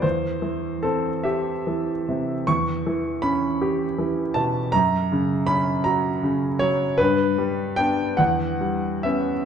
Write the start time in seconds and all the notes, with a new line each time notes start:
0.02 E2 C5
0.42 E3
0.83 C4 A4
1.23 G4 E5
1.67 E3
2.09 C3
2.47 E2 C#6
2.87 E3
3.22 C#4 B5
3.62 G4
3.99 E3
4.34 B2 A5
4.72 F#2 A#5
5.12 C#3
5.47 C#4 B5
5.84 F#4 A#5
6.23 C#3
6.59 F#3 C#5
6.98 G2 B4
7.38 G3
7.76 B3 D4 G5
8.17 E2 F#5
8.61 G3
9.03 B3 C#4 E5